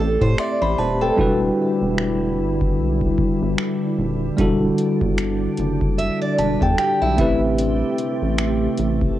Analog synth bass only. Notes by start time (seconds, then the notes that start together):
0.00 A1
0.21 A2
0.62 A1
0.79 D#1
1.18 E1
1.82 E1
2.39 G1
2.79 B1
3.42 G1
3.98 D#1
4.39 E1
5.02 G1
5.59 F#1
6.39 E1
6.62 E2
7.02 B1
7.19 A1
8.22 A1
8.79 A1